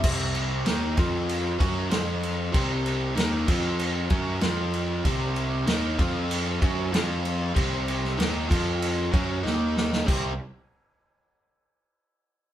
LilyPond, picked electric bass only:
\new Staff \with { instrumentName = "Picked electric bass" } { \clef bass \time 4/4 \key f \major \tempo 4 = 96 c,4 ees,8 f,4 fis,8 f,4 | c,4 ees,8 f,4 fis,8 f,4 | c,4 ees,8 f,4 fis,8 f,4 | c,4 ees,8 f,4 fis,8 ees,4 |
c,8 r2. r8 | }